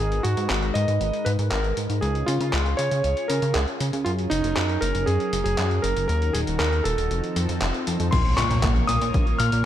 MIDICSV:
0, 0, Header, 1, 6, 480
1, 0, Start_track
1, 0, Tempo, 508475
1, 1912, Time_signature, 4, 2, 24, 8
1, 9111, End_track
2, 0, Start_track
2, 0, Title_t, "Electric grand piano"
2, 0, Program_c, 0, 2
2, 0, Note_on_c, 0, 68, 85
2, 220, Note_on_c, 0, 66, 96
2, 233, Note_off_c, 0, 68, 0
2, 672, Note_off_c, 0, 66, 0
2, 698, Note_on_c, 0, 75, 101
2, 1178, Note_on_c, 0, 71, 83
2, 1199, Note_off_c, 0, 75, 0
2, 1234, Note_off_c, 0, 71, 0
2, 1417, Note_on_c, 0, 70, 76
2, 1647, Note_off_c, 0, 70, 0
2, 1898, Note_on_c, 0, 68, 89
2, 2137, Note_on_c, 0, 65, 96
2, 2152, Note_off_c, 0, 68, 0
2, 2616, Note_on_c, 0, 73, 104
2, 2639, Note_off_c, 0, 65, 0
2, 3097, Note_on_c, 0, 70, 89
2, 3118, Note_off_c, 0, 73, 0
2, 3338, Note_on_c, 0, 68, 75
2, 3352, Note_off_c, 0, 70, 0
2, 3393, Note_off_c, 0, 68, 0
2, 3819, Note_on_c, 0, 65, 92
2, 3874, Note_off_c, 0, 65, 0
2, 4057, Note_on_c, 0, 63, 105
2, 4538, Note_on_c, 0, 70, 101
2, 4559, Note_off_c, 0, 63, 0
2, 4768, Note_off_c, 0, 70, 0
2, 4778, Note_on_c, 0, 68, 98
2, 5122, Note_off_c, 0, 68, 0
2, 5136, Note_on_c, 0, 68, 96
2, 5497, Note_on_c, 0, 70, 96
2, 5515, Note_off_c, 0, 68, 0
2, 5723, Note_off_c, 0, 70, 0
2, 5737, Note_on_c, 0, 70, 101
2, 5967, Note_off_c, 0, 70, 0
2, 5978, Note_on_c, 0, 68, 89
2, 6034, Note_off_c, 0, 68, 0
2, 6218, Note_on_c, 0, 70, 92
2, 6456, Note_on_c, 0, 69, 88
2, 6472, Note_off_c, 0, 70, 0
2, 7146, Note_off_c, 0, 69, 0
2, 7656, Note_on_c, 0, 84, 87
2, 7898, Note_on_c, 0, 85, 105
2, 7911, Note_off_c, 0, 84, 0
2, 8378, Note_on_c, 0, 87, 116
2, 8399, Note_off_c, 0, 85, 0
2, 8860, Note_on_c, 0, 89, 105
2, 8879, Note_off_c, 0, 87, 0
2, 9111, Note_off_c, 0, 89, 0
2, 9111, End_track
3, 0, Start_track
3, 0, Title_t, "Analog synth pad"
3, 0, Program_c, 1, 89
3, 0, Note_on_c, 1, 56, 74
3, 0, Note_on_c, 1, 63, 66
3, 0, Note_on_c, 1, 70, 83
3, 0, Note_on_c, 1, 71, 81
3, 1873, Note_off_c, 1, 63, 0
3, 1873, Note_off_c, 1, 70, 0
3, 1891, Note_off_c, 1, 71, 0
3, 1892, Note_off_c, 1, 56, 0
3, 1910, Note_on_c, 1, 61, 74
3, 1911, Note_on_c, 1, 65, 67
3, 1911, Note_on_c, 1, 68, 83
3, 3812, Note_off_c, 1, 61, 0
3, 3812, Note_off_c, 1, 65, 0
3, 3812, Note_off_c, 1, 68, 0
3, 3832, Note_on_c, 1, 61, 67
3, 3832, Note_on_c, 1, 70, 83
3, 3833, Note_on_c, 1, 54, 75
3, 3833, Note_on_c, 1, 68, 69
3, 5733, Note_off_c, 1, 54, 0
3, 5733, Note_off_c, 1, 61, 0
3, 5733, Note_off_c, 1, 68, 0
3, 5750, Note_on_c, 1, 63, 68
3, 5750, Note_on_c, 1, 66, 66
3, 5751, Note_on_c, 1, 51, 73
3, 6683, Note_off_c, 1, 70, 0
3, 6701, Note_off_c, 1, 66, 0
3, 6702, Note_off_c, 1, 51, 0
3, 6710, Note_on_c, 1, 60, 67
3, 6710, Note_on_c, 1, 69, 81
3, 6711, Note_on_c, 1, 53, 72
3, 7652, Note_off_c, 1, 63, 0
3, 7661, Note_off_c, 1, 53, 0
3, 7661, Note_off_c, 1, 60, 0
3, 7661, Note_off_c, 1, 69, 0
3, 7670, Note_on_c, 1, 58, 78
3, 7670, Note_on_c, 1, 65, 72
3, 7670, Note_on_c, 1, 73, 89
3, 7671, Note_on_c, 1, 70, 72
3, 9111, Note_off_c, 1, 58, 0
3, 9111, Note_off_c, 1, 65, 0
3, 9111, Note_off_c, 1, 70, 0
3, 9111, Note_off_c, 1, 73, 0
3, 9111, End_track
4, 0, Start_track
4, 0, Title_t, "Analog synth bass"
4, 0, Program_c, 2, 38
4, 0, Note_on_c, 2, 32, 98
4, 193, Note_off_c, 2, 32, 0
4, 232, Note_on_c, 2, 44, 86
4, 333, Note_off_c, 2, 44, 0
4, 352, Note_on_c, 2, 44, 86
4, 453, Note_off_c, 2, 44, 0
4, 473, Note_on_c, 2, 32, 82
4, 674, Note_off_c, 2, 32, 0
4, 711, Note_on_c, 2, 44, 90
4, 812, Note_off_c, 2, 44, 0
4, 833, Note_on_c, 2, 44, 78
4, 933, Note_off_c, 2, 44, 0
4, 951, Note_on_c, 2, 32, 78
4, 1052, Note_off_c, 2, 32, 0
4, 1191, Note_on_c, 2, 44, 98
4, 1292, Note_off_c, 2, 44, 0
4, 1311, Note_on_c, 2, 44, 80
4, 1412, Note_off_c, 2, 44, 0
4, 1431, Note_on_c, 2, 32, 100
4, 1633, Note_off_c, 2, 32, 0
4, 1671, Note_on_c, 2, 44, 92
4, 1772, Note_off_c, 2, 44, 0
4, 1791, Note_on_c, 2, 44, 77
4, 1892, Note_off_c, 2, 44, 0
4, 1911, Note_on_c, 2, 37, 98
4, 2113, Note_off_c, 2, 37, 0
4, 2151, Note_on_c, 2, 49, 84
4, 2252, Note_off_c, 2, 49, 0
4, 2271, Note_on_c, 2, 49, 89
4, 2372, Note_off_c, 2, 49, 0
4, 2391, Note_on_c, 2, 37, 84
4, 2593, Note_off_c, 2, 37, 0
4, 2632, Note_on_c, 2, 49, 93
4, 2733, Note_off_c, 2, 49, 0
4, 2752, Note_on_c, 2, 49, 78
4, 2853, Note_off_c, 2, 49, 0
4, 2873, Note_on_c, 2, 37, 83
4, 2973, Note_off_c, 2, 37, 0
4, 3113, Note_on_c, 2, 49, 81
4, 3213, Note_off_c, 2, 49, 0
4, 3232, Note_on_c, 2, 49, 83
4, 3333, Note_off_c, 2, 49, 0
4, 3353, Note_on_c, 2, 37, 78
4, 3453, Note_off_c, 2, 37, 0
4, 3592, Note_on_c, 2, 49, 90
4, 3693, Note_off_c, 2, 49, 0
4, 3712, Note_on_c, 2, 49, 76
4, 3813, Note_off_c, 2, 49, 0
4, 3832, Note_on_c, 2, 42, 96
4, 4034, Note_off_c, 2, 42, 0
4, 4071, Note_on_c, 2, 30, 86
4, 4172, Note_off_c, 2, 30, 0
4, 4190, Note_on_c, 2, 30, 89
4, 4292, Note_off_c, 2, 30, 0
4, 4311, Note_on_c, 2, 42, 86
4, 4513, Note_off_c, 2, 42, 0
4, 4551, Note_on_c, 2, 30, 92
4, 4652, Note_off_c, 2, 30, 0
4, 4672, Note_on_c, 2, 30, 77
4, 4772, Note_off_c, 2, 30, 0
4, 4792, Note_on_c, 2, 42, 78
4, 4892, Note_off_c, 2, 42, 0
4, 5032, Note_on_c, 2, 30, 99
4, 5133, Note_off_c, 2, 30, 0
4, 5151, Note_on_c, 2, 30, 82
4, 5252, Note_off_c, 2, 30, 0
4, 5271, Note_on_c, 2, 42, 101
4, 5473, Note_off_c, 2, 42, 0
4, 5510, Note_on_c, 2, 30, 91
4, 5612, Note_off_c, 2, 30, 0
4, 5630, Note_on_c, 2, 30, 77
4, 5732, Note_off_c, 2, 30, 0
4, 5751, Note_on_c, 2, 39, 99
4, 5953, Note_off_c, 2, 39, 0
4, 5991, Note_on_c, 2, 27, 84
4, 6092, Note_off_c, 2, 27, 0
4, 6111, Note_on_c, 2, 27, 87
4, 6212, Note_off_c, 2, 27, 0
4, 6230, Note_on_c, 2, 39, 87
4, 6433, Note_off_c, 2, 39, 0
4, 6470, Note_on_c, 2, 27, 92
4, 6572, Note_off_c, 2, 27, 0
4, 6592, Note_on_c, 2, 27, 79
4, 6693, Note_off_c, 2, 27, 0
4, 6710, Note_on_c, 2, 29, 81
4, 6812, Note_off_c, 2, 29, 0
4, 6950, Note_on_c, 2, 41, 97
4, 7052, Note_off_c, 2, 41, 0
4, 7070, Note_on_c, 2, 41, 90
4, 7172, Note_off_c, 2, 41, 0
4, 7192, Note_on_c, 2, 29, 97
4, 7292, Note_off_c, 2, 29, 0
4, 7432, Note_on_c, 2, 41, 98
4, 7532, Note_off_c, 2, 41, 0
4, 7552, Note_on_c, 2, 41, 101
4, 7653, Note_off_c, 2, 41, 0
4, 7671, Note_on_c, 2, 34, 101
4, 7873, Note_off_c, 2, 34, 0
4, 7911, Note_on_c, 2, 46, 90
4, 8012, Note_off_c, 2, 46, 0
4, 8032, Note_on_c, 2, 46, 92
4, 8133, Note_off_c, 2, 46, 0
4, 8151, Note_on_c, 2, 34, 91
4, 8353, Note_off_c, 2, 34, 0
4, 8391, Note_on_c, 2, 46, 93
4, 8492, Note_off_c, 2, 46, 0
4, 8512, Note_on_c, 2, 46, 84
4, 8613, Note_off_c, 2, 46, 0
4, 8632, Note_on_c, 2, 34, 81
4, 8732, Note_off_c, 2, 34, 0
4, 8872, Note_on_c, 2, 46, 102
4, 8973, Note_off_c, 2, 46, 0
4, 8992, Note_on_c, 2, 46, 85
4, 9093, Note_off_c, 2, 46, 0
4, 9111, End_track
5, 0, Start_track
5, 0, Title_t, "Impact"
5, 0, Program_c, 3, 103
5, 7671, Note_on_c, 3, 60, 78
5, 9111, Note_off_c, 3, 60, 0
5, 9111, End_track
6, 0, Start_track
6, 0, Title_t, "Drums"
6, 111, Note_on_c, 9, 42, 23
6, 205, Note_off_c, 9, 42, 0
6, 231, Note_on_c, 9, 42, 82
6, 326, Note_off_c, 9, 42, 0
6, 351, Note_on_c, 9, 42, 47
6, 446, Note_off_c, 9, 42, 0
6, 471, Note_on_c, 9, 39, 108
6, 471, Note_on_c, 9, 42, 45
6, 566, Note_off_c, 9, 39, 0
6, 566, Note_off_c, 9, 42, 0
6, 591, Note_on_c, 9, 42, 23
6, 686, Note_off_c, 9, 42, 0
6, 711, Note_on_c, 9, 42, 83
6, 805, Note_off_c, 9, 42, 0
6, 831, Note_on_c, 9, 42, 46
6, 926, Note_off_c, 9, 42, 0
6, 951, Note_on_c, 9, 42, 47
6, 1046, Note_off_c, 9, 42, 0
6, 1071, Note_on_c, 9, 42, 23
6, 1166, Note_off_c, 9, 42, 0
6, 1191, Note_on_c, 9, 42, 84
6, 1285, Note_off_c, 9, 42, 0
6, 1311, Note_on_c, 9, 42, 48
6, 1405, Note_off_c, 9, 42, 0
6, 1431, Note_on_c, 9, 39, 110
6, 1431, Note_on_c, 9, 42, 46
6, 1525, Note_off_c, 9, 39, 0
6, 1525, Note_off_c, 9, 42, 0
6, 1551, Note_on_c, 9, 42, 22
6, 1645, Note_off_c, 9, 42, 0
6, 1671, Note_on_c, 9, 42, 82
6, 1765, Note_off_c, 9, 42, 0
6, 1791, Note_on_c, 9, 42, 48
6, 1885, Note_off_c, 9, 42, 0
6, 1911, Note_on_c, 9, 42, 48
6, 2006, Note_off_c, 9, 42, 0
6, 2031, Note_on_c, 9, 42, 23
6, 2126, Note_off_c, 9, 42, 0
6, 2151, Note_on_c, 9, 42, 88
6, 2245, Note_off_c, 9, 42, 0
6, 2271, Note_on_c, 9, 42, 49
6, 2365, Note_off_c, 9, 42, 0
6, 2391, Note_on_c, 9, 39, 102
6, 2391, Note_on_c, 9, 42, 45
6, 2485, Note_off_c, 9, 39, 0
6, 2485, Note_off_c, 9, 42, 0
6, 2512, Note_on_c, 9, 42, 24
6, 2606, Note_off_c, 9, 42, 0
6, 2631, Note_on_c, 9, 42, 85
6, 2726, Note_off_c, 9, 42, 0
6, 2751, Note_on_c, 9, 42, 49
6, 2845, Note_off_c, 9, 42, 0
6, 2871, Note_on_c, 9, 42, 47
6, 2965, Note_off_c, 9, 42, 0
6, 2992, Note_on_c, 9, 42, 24
6, 3086, Note_off_c, 9, 42, 0
6, 3111, Note_on_c, 9, 42, 86
6, 3206, Note_off_c, 9, 42, 0
6, 3231, Note_on_c, 9, 42, 49
6, 3326, Note_off_c, 9, 42, 0
6, 3351, Note_on_c, 9, 39, 106
6, 3351, Note_on_c, 9, 42, 49
6, 3446, Note_off_c, 9, 39, 0
6, 3446, Note_off_c, 9, 42, 0
6, 3471, Note_on_c, 9, 42, 24
6, 3566, Note_off_c, 9, 42, 0
6, 3592, Note_on_c, 9, 42, 85
6, 3686, Note_off_c, 9, 42, 0
6, 3712, Note_on_c, 9, 42, 49
6, 3806, Note_off_c, 9, 42, 0
6, 3832, Note_on_c, 9, 42, 50
6, 3926, Note_off_c, 9, 42, 0
6, 3951, Note_on_c, 9, 42, 25
6, 4046, Note_off_c, 9, 42, 0
6, 4071, Note_on_c, 9, 42, 90
6, 4166, Note_off_c, 9, 42, 0
6, 4192, Note_on_c, 9, 42, 51
6, 4286, Note_off_c, 9, 42, 0
6, 4311, Note_on_c, 9, 39, 102
6, 4311, Note_on_c, 9, 42, 48
6, 4405, Note_off_c, 9, 39, 0
6, 4405, Note_off_c, 9, 42, 0
6, 4431, Note_on_c, 9, 42, 26
6, 4526, Note_off_c, 9, 42, 0
6, 4551, Note_on_c, 9, 42, 92
6, 4645, Note_off_c, 9, 42, 0
6, 4670, Note_on_c, 9, 42, 53
6, 4765, Note_off_c, 9, 42, 0
6, 4790, Note_on_c, 9, 42, 52
6, 4885, Note_off_c, 9, 42, 0
6, 4910, Note_on_c, 9, 42, 25
6, 5005, Note_off_c, 9, 42, 0
6, 5030, Note_on_c, 9, 42, 90
6, 5125, Note_off_c, 9, 42, 0
6, 5151, Note_on_c, 9, 42, 53
6, 5245, Note_off_c, 9, 42, 0
6, 5271, Note_on_c, 9, 39, 106
6, 5271, Note_on_c, 9, 42, 51
6, 5365, Note_off_c, 9, 39, 0
6, 5365, Note_off_c, 9, 42, 0
6, 5392, Note_on_c, 9, 42, 26
6, 5486, Note_off_c, 9, 42, 0
6, 5511, Note_on_c, 9, 42, 89
6, 5606, Note_off_c, 9, 42, 0
6, 5631, Note_on_c, 9, 42, 52
6, 5726, Note_off_c, 9, 42, 0
6, 5751, Note_on_c, 9, 42, 51
6, 5845, Note_off_c, 9, 42, 0
6, 5871, Note_on_c, 9, 42, 26
6, 5965, Note_off_c, 9, 42, 0
6, 5990, Note_on_c, 9, 42, 93
6, 6085, Note_off_c, 9, 42, 0
6, 6111, Note_on_c, 9, 42, 53
6, 6205, Note_off_c, 9, 42, 0
6, 6230, Note_on_c, 9, 39, 104
6, 6230, Note_on_c, 9, 42, 51
6, 6325, Note_off_c, 9, 39, 0
6, 6325, Note_off_c, 9, 42, 0
6, 6351, Note_on_c, 9, 42, 27
6, 6445, Note_off_c, 9, 42, 0
6, 6470, Note_on_c, 9, 42, 92
6, 6565, Note_off_c, 9, 42, 0
6, 6590, Note_on_c, 9, 42, 53
6, 6685, Note_off_c, 9, 42, 0
6, 6710, Note_on_c, 9, 42, 51
6, 6805, Note_off_c, 9, 42, 0
6, 6831, Note_on_c, 9, 42, 26
6, 6925, Note_off_c, 9, 42, 0
6, 6950, Note_on_c, 9, 42, 91
6, 7045, Note_off_c, 9, 42, 0
6, 7071, Note_on_c, 9, 42, 52
6, 7165, Note_off_c, 9, 42, 0
6, 7190, Note_on_c, 9, 39, 108
6, 7190, Note_on_c, 9, 42, 53
6, 7285, Note_off_c, 9, 39, 0
6, 7285, Note_off_c, 9, 42, 0
6, 7310, Note_on_c, 9, 42, 26
6, 7405, Note_off_c, 9, 42, 0
6, 7430, Note_on_c, 9, 42, 91
6, 7525, Note_off_c, 9, 42, 0
6, 7550, Note_on_c, 9, 42, 53
6, 7644, Note_off_c, 9, 42, 0
6, 7670, Note_on_c, 9, 42, 57
6, 7670, Note_on_c, 9, 49, 105
6, 7671, Note_on_c, 9, 36, 120
6, 7764, Note_off_c, 9, 42, 0
6, 7764, Note_off_c, 9, 49, 0
6, 7765, Note_off_c, 9, 36, 0
6, 7791, Note_on_c, 9, 42, 27
6, 7885, Note_off_c, 9, 42, 0
6, 7910, Note_on_c, 9, 39, 75
6, 7910, Note_on_c, 9, 42, 98
6, 8004, Note_off_c, 9, 39, 0
6, 8004, Note_off_c, 9, 42, 0
6, 8030, Note_on_c, 9, 42, 55
6, 8124, Note_off_c, 9, 42, 0
6, 8150, Note_on_c, 9, 39, 118
6, 8150, Note_on_c, 9, 42, 53
6, 8151, Note_on_c, 9, 36, 118
6, 8245, Note_off_c, 9, 39, 0
6, 8245, Note_off_c, 9, 42, 0
6, 8246, Note_off_c, 9, 36, 0
6, 8270, Note_on_c, 9, 42, 27
6, 8364, Note_off_c, 9, 42, 0
6, 8390, Note_on_c, 9, 42, 100
6, 8484, Note_off_c, 9, 42, 0
6, 8510, Note_on_c, 9, 42, 55
6, 8604, Note_off_c, 9, 42, 0
6, 8630, Note_on_c, 9, 42, 57
6, 8631, Note_on_c, 9, 36, 116
6, 8725, Note_off_c, 9, 42, 0
6, 8726, Note_off_c, 9, 36, 0
6, 8750, Note_on_c, 9, 42, 27
6, 8845, Note_off_c, 9, 42, 0
6, 8870, Note_on_c, 9, 42, 101
6, 8964, Note_off_c, 9, 42, 0
6, 8990, Note_on_c, 9, 42, 58
6, 9084, Note_off_c, 9, 42, 0
6, 9111, End_track
0, 0, End_of_file